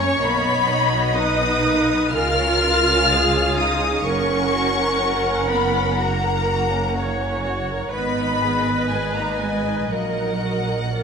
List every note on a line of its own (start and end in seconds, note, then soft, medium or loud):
0.00 0.18 F#2 medium
0.00 0.22 C#4 medium
0.00 0.21 C#5 medium
0.00 1.16 C#5 medium
0.00 0.22 C#6 loud
0.21 2.07 B1 medium
0.21 0.43 A#3 medium
0.21 1.15 B3 medium
0.21 2.07 D#5 medium
0.21 1.15 B5 loud
0.46 0.69 B3 medium
0.69 0.92 D#4 medium
0.94 1.16 F#4 medium
1.16 2.11 D#4 medium
1.16 1.40 D#4 medium
1.16 2.10 B4 medium
1.16 2.11 D#6 loud
1.41 1.64 B3 medium
1.65 1.88 A#3 medium
1.89 2.12 B3 medium
2.10 4.04 C#2 medium
2.10 2.34 G#3 medium
2.10 3.56 F4 loud
2.10 3.09 A#4 medium
2.10 4.05 F5 medium
2.10 3.56 F6 loud
2.38 2.61 C#4 medium
2.63 2.85 F4 medium
2.87 3.10 C#4 medium
3.09 3.33 G#3 medium
3.09 4.05 G#4 medium
3.35 3.58 C#4 medium
3.56 4.05 D#4 medium
3.56 3.82 F4 medium
3.56 4.03 D#6 loud
3.82 4.05 C#4 medium
4.03 7.88 F#1 medium
4.03 5.47 C#4 medium
4.03 6.91 A#4 medium
4.03 7.94 F#5 medium
4.03 5.49 C#6 loud
4.07 4.28 A#3 medium
4.30 4.53 C#4 medium
4.53 4.77 F#4 medium
4.77 5.01 A#4 medium
5.01 5.25 F#4 medium
5.26 5.50 C#4 medium
5.49 5.74 A#3 medium
5.49 5.98 B3 medium
5.49 5.97 B5 loud
5.74 5.98 C#4 medium
5.98 7.44 A#3 medium
5.98 6.21 F#4 medium
5.98 7.44 A#5 loud
6.23 6.47 A#4 medium
6.47 6.71 F#4 medium
6.71 6.95 C#4 medium
6.93 7.18 A#3 medium
6.93 7.91 C#5 medium
7.19 7.43 C#4 medium
7.44 7.68 F#4 medium
7.70 7.93 A#4 medium
7.91 9.86 G#1 medium
7.91 8.87 B3 medium
7.91 8.16 B3 medium
7.91 9.90 B4 medium
7.91 10.90 D#5 medium
7.91 8.87 B5 loud
8.18 8.42 D#4 medium
8.43 8.67 G#4 medium
8.68 8.92 B4 soft
8.89 9.15 G#3 medium
8.89 9.16 G#4 medium
8.89 9.14 G#5 medium
9.14 9.40 A#3 medium
9.14 9.41 D#4 medium
9.14 9.40 A#5 medium
9.36 9.90 G#3 medium
9.36 9.88 G#5 medium
9.42 9.66 B3 soft
9.67 9.91 D#4 soft
9.89 11.03 A#1 medium
9.89 11.03 F#3 medium
9.89 10.14 A#3 medium
9.89 10.93 A#4 medium
9.89 11.03 F#5 medium
10.18 10.42 D#4 soft
10.43 10.68 F#4 soft
10.69 10.94 A#4 soft
10.95 11.03 A#3 soft
10.95 11.03 A#4 soft
10.95 11.03 D5 soft